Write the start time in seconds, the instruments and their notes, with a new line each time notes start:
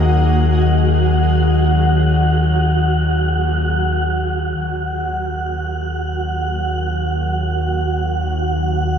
Already playing: synth drone D#2 D#3, ambient pad F#3 A#3 G#4 D#5, synth texture F#4 F#5
4.54 synth drone D#2, synth texture F#4 F#6
4.59 synth drone D#3
7.69 ambient pad D5
7.94 ambient pad A#4